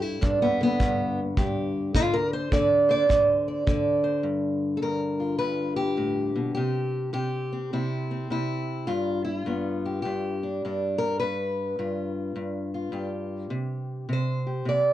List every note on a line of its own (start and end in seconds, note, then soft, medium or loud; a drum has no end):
0.00 0.20 G2 medium
0.00 0.22 E4 loud
0.21 0.79 G2 medium
0.21 0.41 D4 medium
0.21 kick medium
0.42 0.61 B3 medium
0.61 1.93 D3 medium
0.61 1.19 B3 loud
0.80 1.36 G2 medium
0.80 kick medium
1.37 1.92 G2 medium
1.37 1.92 G4 medium
1.37 kick medium
1.94 2.51 D3 medium
1.94 2.14 F4 loud
1.94 kick medium
2.14 2.33 A#4 medium
2.33 2.52 C5 medium
2.52 3.08 D3 medium
2.52 2.89 D5 medium
2.52 kick medium
2.89 4.02 C5 medium
2.89 3.22 D5 loud
3.09 3.65 D3 medium
3.09 kick medium
3.48 3.67 D5 medium
3.66 6.56 D3 medium
3.66 4.23 D5 medium
3.66 kick medium
4.04 4.22 C5 medium
4.23 4.81 G2 medium
4.77 4.82 A4 medium
4.82 5.39 G2 medium
4.82 5.38 A#4 medium
5.20 6.54 F4 soft
5.38 6.54 G2 medium
5.38 5.76 B4 medium
5.76 6.53 G4 medium
5.97 6.35 A2 medium
6.35 6.57 B2 medium
6.55 7.12 C3 medium
6.55 7.12 G4 medium
7.13 7.72 C3 medium
7.13 7.72 G4 medium
7.52 8.10 C4 soft
7.73 8.29 C3 medium
7.73 8.30 E4 medium
8.11 8.87 C4 soft
8.30 8.86 C3 medium
8.30 8.89 E4 medium
8.87 9.46 G2 medium
8.87 9.23 F4 medium
9.25 9.39 E4 medium
9.39 10.41 F4 medium
9.46 10.05 G2 medium
9.46 11.18 B3 soft
9.86 10.02 G4 soft
10.02 10.63 G2 medium
10.02 10.98 G4 medium
10.43 10.63 D4 soft
10.65 11.19 G2 medium
10.65 11.19 D4 soft
10.98 11.19 A#4 medium
11.20 11.78 G2 medium
11.20 12.92 B4 medium
11.79 12.34 G2 medium
11.79 12.73 F4 soft
12.35 12.91 G2 medium
12.74 13.50 F4 soft
12.92 13.48 G2 medium
12.92 14.12 G4 soft
13.50 14.08 C3 medium
14.09 14.65 C3 medium
14.13 14.68 C5 medium
14.46 14.93 G4 soft
14.65 14.93 C3 medium
14.65 14.93 D5 medium